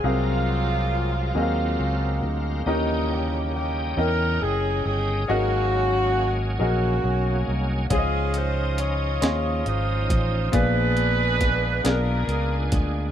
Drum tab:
HH |------|------|------|xxxxxx|
SD |------|------|------|---o--|
BD |------|------|------|o----o|

HH |xxxxxx|
SD |--oo--|
BD |o-o--o|